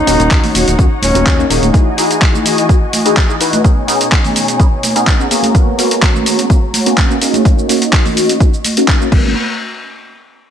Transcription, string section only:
Already playing: D#4 C#5 F#5
1.74 E3 F#4 D#5 G#5
3.64 B2 D#4 C#5 G#5
5.31 G#3 F#4 C#5 A#5
7.22 D#5 C#6
9.12 F#4 B4 C#5 A#5

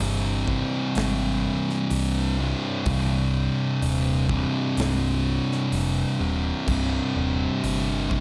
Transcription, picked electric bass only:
0.00 G1
0.96 G#1
1.91 C2
2.86 C1
3.82 D#1
4.77 C1
5.72 F1
6.20 D#1
6.68 C1
7.16 D#1
7.63 G1

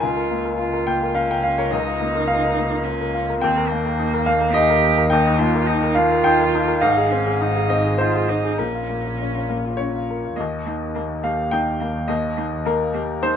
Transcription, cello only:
0.02 F4
0.59 F4
1.15 C#4
1.71 D#4
2.84 C#4
3.40 C4
3.68 A#3
4.54 G4
5.10 D#4
5.39 F4
5.67 D#4
5.96 F4
6.81 D#4
7.11 C#4
7.41 D#4
8.00 F4
8.29 D#4
8.58 C#4
10.36 A#3
10.66 A#3
10.95 A#3
11.23 A#3
11.52 A#3
11.80 A#3
12.08 A#3
12.37 A#3
12.65 A#3
12.94 A#3
13.23 A#3

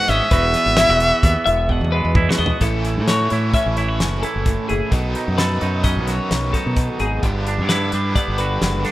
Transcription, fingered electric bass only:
0.09 G#1
0.32 E1
0.66 G#1
0.89 E1
1.23 D#2
1.47 E1
1.81 E2
2.05 E2
2.39 E2
2.61 A1
2.97 A2
3.32 A2
3.66 A1
4.01 F#1
4.36 F#1
4.71 F#1
4.92 B1
5.28 F#2
5.62 F#2
5.97 B1
6.31 B1
6.66 B2
7.00 G#1
7.23 G1
7.58 G2
7.93 G2
8.28 G1
8.62 F#1

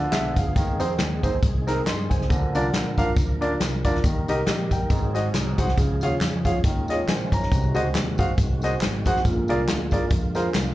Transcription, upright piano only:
Already playing: D3 F4 D5
0.12 G#4 E5
0.37 G#4 F5
0.56 D#3
0.79 C4 D#4 G#4 C5
1.23 C4 D#4 G#4 C5
1.67 C4 D#4 G#4 A#4
1.86 D#5 C6
2.10 C5 G#5
2.29 D3
2.55 D4 F4 A#4 D5
2.98 D4 F4 A#4 F5
3.41 D4 F4 A#4 D5
3.85 D4 F4 A#4 D5
4.05 D#3
4.29 D#4 G4 A#4 D#5
4.48 G4 D#5
4.72 A#4 G5
4.91 G#2
5.14 F#4 G#4 C5 D#5
5.58 F#4 G#4 C5 F#5
5.77 C#3
6.03 F4 G#4 C#5 F5
6.45 F4 G#4 C#5 F5
6.65 D#3
6.89 F4 G#4 C#5 D#5
7.09 C5 G#5
7.33 C#5 A#5
7.51 C3
7.74 F#4 G#4 C5 D#5
8.19 F#4 G#4 C5 F5
8.63 F#4 G#4 C5 D#5
9.06 F#4 G#4 C5 F#5
9.25 A#2
9.49 F4 G#4 A#4 D5
9.92 F4 G#4 A#4 D5
10.35 F4 G#4 A#4 C5

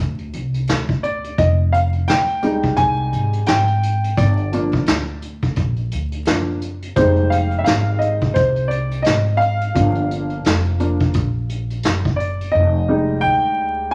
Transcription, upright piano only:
1.03 D5
1.38 D#5
1.73 F5
2.08 G5
2.43 G3 G#3 D#4
2.77 G#5
3.47 G5
4.17 D5
4.52 F3 A#3 D4
6.27 F3 A#3 D4
6.96 G3 G#3 D#4 C5
7.30 F5
7.58 E5
7.64 F5
7.99 D#5
8.34 C5
8.68 D5
9.02 D#5
9.37 F5
9.74 F3 A#3 D4
10.80 F3 A#3 D4
12.16 D5
12.52 D#5
12.88 G3 G#3 D#4
13.21 G5

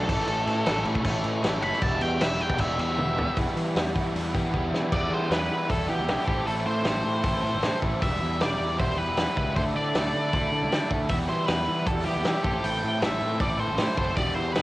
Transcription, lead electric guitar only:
0.09 A4
1.63 B5
1.83 A5
2.02 G5
2.22 E5
2.41 G5
2.61 E5
2.80 E5
4.93 D5
5.14 C5
5.32 B4
5.71 A4
5.90 G4
6.29 G4
6.47 A4
6.67 C5
8.03 E5
8.42 D5
8.80 C5
8.98 B4
9.38 B4
9.56 C5
9.76 D5
11.10 E5
11.29 C5
11.46 B4
11.87 A4
12.05 G4
12.45 G4
12.64 G5
13.03 E5
13.41 D5
13.60 C5
13.98 C5
14.16 D5
14.34 C5
14.53 B4

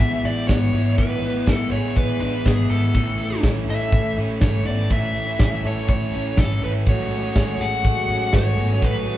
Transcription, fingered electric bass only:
0.00 A1
0.25 A1
0.50 G#1
0.74 G#1
0.99 A1
1.48 A1
1.72 A1
1.97 A1
2.21 A1
2.45 G#1
2.70 G#1
3.43 A1
3.69 A1
3.93 A1
4.18 A1
4.42 G#1
4.67 G#1
5.40 A1
5.65 A1
5.89 A1
6.15 A1
6.38 G#1
6.63 G#1
6.87 A1
7.36 A1
7.60 A1
7.85 A1
8.09 A1
8.34 G#1
8.58 G#1
8.82 A1

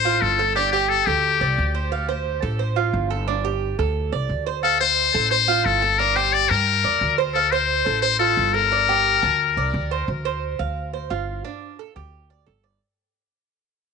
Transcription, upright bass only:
Already playing: A1
0.22 G1
1.07 D2
1.41 C2
1.58 D2
2.43 A1
2.93 G1
3.79 D2
4.12 C2
4.29 D2
5.15 A1
5.66 G1
6.50 G2
6.84 E2
7.01 D2
7.86 A1
8.37 G1
9.23 D2
9.57 C2
9.74 D2
10.08 D2
10.59 D2
11.11 G1
11.96 D2
12.47 G1

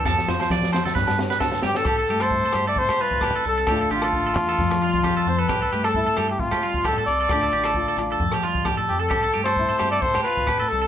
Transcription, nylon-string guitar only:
0.04 F2
0.28 F4
0.50 E2
0.73 F2
0.95 G2
1.18 G4
1.40 D3
1.63 D4
1.86 C3
2.10 A3
2.32 E4
2.54 C4
2.77 C3
3.00 G3
3.23 A4
3.46 G3
3.68 D3 A3 D4 F4
3.91 D4
4.14 D3
4.36 E3
4.59 F2 F3 G3 C4
4.82 G3
5.04 C4
5.28 C4
5.51 C3
5.73 A3
5.96 E4
6.20 C4
6.41 C3
6.64 G3
6.86 G3
7.09 A4
7.32 D3 A3 D4 F4
7.76 F4
7.97 F4
8.20 F2
8.45 G3
8.68 G4
8.90 C4
9.12 C3
9.37 A3
9.59 E4
9.82 C4
10.03 C3
10.27 muted nylon-string guitar stroke
10.49 A4
10.72 G3

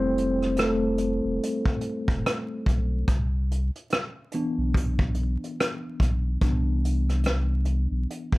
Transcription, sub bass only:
Already playing: F1
1.24 E1
2.08 E1
2.66 B1
3.08 C2
4.58 B1
6.00 B1
6.42 C2
7.91 B1

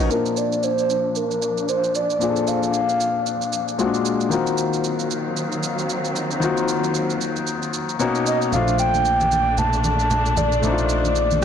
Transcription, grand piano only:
Already playing: C#4 D#4 F#4 A#4
0.09 A#2 C4 D4 F4
0.13 A5
2.19 A#2 C4 D4 F4
2.24 G#4
2.30 A4
3.78 A#2 G#3 C4 F4 F#4
3.86 D4
4.30 D#3 A#3 C4 F4
4.34 F#4
6.40 D#3 A#3 C4 F4
6.45 F#4
7.99 B2 A#3 C#4 D#4 F#4
8.51 A3 C4 D4
8.55 F4
10.61 A3 C4 D4
10.66 D#4
10.72 F4

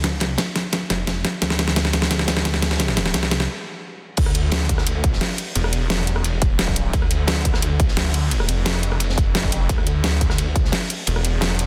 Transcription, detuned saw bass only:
Already playing: D2
0.12 C#2
0.90 F1
1.42 D2
1.94 D2
2.28 D2
3.14 C2
4.18 D2
4.35 D2
4.87 D2
5.56 E1
6.55 D1
6.77 C1
6.93 D2
7.11 D2
7.62 D2
7.97 D2
8.49 F1
9.69 D2
9.87 D2
10.38 D2
11.07 E1

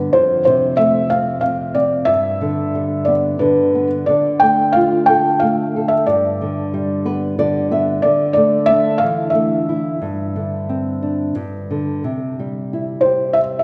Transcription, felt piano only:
0.13 C5
0.45 C5
0.77 E5
1.10 F5
1.41 F5
1.75 D5
2.05 E5
3.05 D5
3.39 B4
4.06 D5
4.40 G5
4.73 F5
5.06 G5
5.40 F5
5.88 E5
6.07 D5
8.02 D5
8.33 D5
8.66 E5
8.98 F5
9.30 E5
13.01 C5
13.33 E5
13.59 E5

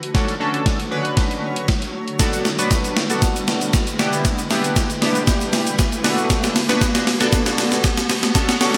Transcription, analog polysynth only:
0.14 C#4 D4 F#4 A4
0.40 C#4 D4 F#4 A4
0.91 C#4 D4 F#4 B4
2.19 B3 D4 F#4 A4
2.58 B3 D4 F#4 B4
3.10 B3 D4 F#4 A4
3.99 B3 D4 E4 G4
4.50 B3 D4 E4 G4
5.02 B3 D4 E4 G4
6.04 B3 D4 F#4 A4
6.69 B3 D4 F#4 B4
7.20 B3 D4 F#4 A4
8.35 C#4 D4 F#4 A4
8.60 C#4 D4 F#4 A4

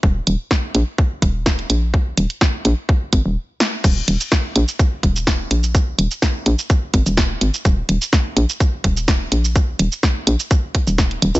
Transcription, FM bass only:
0.03 D#1
0.27 D#1
0.75 A#1
1.22 D#1
1.70 A#1
2.18 D#1
2.65 A#1
3.13 G#1
3.26 D#1
3.84 D#1
4.08 D#1
4.56 A#1
5.03 D#1
5.51 A#1
5.99 D#1
6.46 A#1
6.94 G#1
7.06 D#1
7.41 G#1
7.65 D#1
7.89 D#1
8.37 A#1
8.84 D#1
9.32 A#1
9.79 D#1
10.27 A#1
10.87 D#1
11.22 D#1
11.35 C#2

